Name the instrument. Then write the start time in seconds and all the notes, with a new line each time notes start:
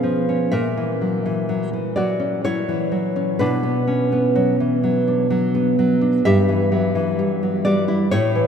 nylon-string guitar
Already playing: B2 B3 C#4 G#4 F5
0.03 F3
0.29 C#4
0.52 A#2 A#4 E5
0.77 E3
1.01 F#3
1.26 E3
1.49 F#3
1.73 E3
1.96 F#3 F#4 D5
2.20 C#4
2.44 F#3 E4 C#5
2.68 E3
2.92 F#3
3.16 C#4
3.39 B2 D4 B4
3.63 B3
3.87 C#4
4.12 B3
4.36 F#3
4.60 E3
4.84 F#3
5.08 D4
5.30 F#3
5.55 B3
5.79 F#3
6.01 D4
6.25 G2 G4 E5
6.49 E3
6.72 F#3
6.95 E3
7.19 G3
7.43 F#3
7.65 G3 F#4 D5
7.88 E4
8.11 A2 E4 C#5
8.35 E3